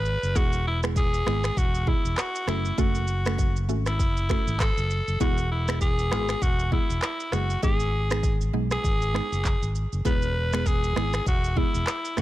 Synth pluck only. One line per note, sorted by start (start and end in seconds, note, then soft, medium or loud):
0.35 0.59 G#3 medium
0.35 0.59 B3 medium
0.35 0.60 E4 medium
0.35 0.60 G#4 loud
0.83 1.23 G#3 medium
0.83 1.23 B3 medium
0.83 1.24 E4 medium
0.83 1.24 G#4 medium
1.26 1.55 G#3 medium
1.26 1.55 B3 medium
1.26 1.55 E4 medium
1.26 1.55 G#4 medium
1.87 2.11 G#3 medium
1.87 2.11 B3 medium
1.87 2.11 E4 medium
1.87 2.11 G#4 medium
2.47 2.71 A3 medium
2.47 2.72 C#4 medium
2.47 2.72 F#4 medium
2.47 2.72 A4 medium
2.78 3.02 A3 medium
2.78 3.02 C#4 medium
2.78 3.02 F#4 medium
2.78 3.02 A4 loud
3.26 3.66 A3 medium
3.26 3.66 C#4 medium
3.26 3.66 F#4 medium
3.26 3.66 A4 medium
3.69 3.97 A3 medium
3.69 3.97 C#4 medium
3.69 3.97 F#4 medium
3.69 3.97 A4 medium
4.29 4.53 A3 medium
4.29 4.53 C#4 medium
4.29 4.54 F#4 medium
4.29 4.54 A4 medium
5.20 5.44 G#3 medium
5.20 5.44 B3 medium
5.20 5.44 E4 medium
5.20 5.45 G#4 loud
5.68 6.08 G#3 medium
5.68 6.08 B3 medium
5.68 6.08 E4 medium
5.68 6.09 G#4 medium
6.11 6.40 G#3 medium
6.11 6.40 B3 medium
6.11 6.40 E4 medium
6.11 6.40 G#4 medium
6.72 6.96 G#3 medium
6.72 6.96 B3 medium
6.72 6.96 E4 medium
6.72 6.96 G#4 medium
7.32 7.56 G#3 medium
7.32 7.56 B3 medium
7.32 7.57 E4 medium
7.32 7.57 G#4 medium
7.62 7.87 G#3 loud
7.62 7.87 B3 medium
7.62 7.87 D#4 medium
7.62 7.87 G#4 loud
8.10 8.51 G#3 medium
8.10 8.51 B3 medium
8.10 8.51 D#4 medium
8.10 8.51 G#4 medium
8.53 8.82 G#3 medium
8.53 8.82 B3 medium
8.53 8.82 D#4 medium
8.53 8.82 G#4 medium
9.14 9.38 G#3 medium
9.14 9.38 B3 medium
9.14 9.38 D#4 medium
9.14 9.38 G#4 medium
10.05 10.29 G#3 medium
10.05 10.29 B3 medium
10.05 10.29 E4 medium
10.05 10.29 G#4 loud
10.53 10.93 G#3 medium
10.53 10.93 B3 medium
10.53 10.93 E4 medium
10.53 10.93 G#4 medium
10.96 11.24 G#3 medium
10.96 11.24 B3 medium
10.96 11.24 E4 medium
10.96 11.25 G#4 medium
11.56 11.81 G#3 medium
11.56 11.81 B3 medium
11.56 11.81 E4 medium
11.56 11.81 G#4 medium
12.17 12.22 A3 medium
12.17 12.22 C#4 medium
12.17 12.22 F#4 medium
12.17 12.22 A4 medium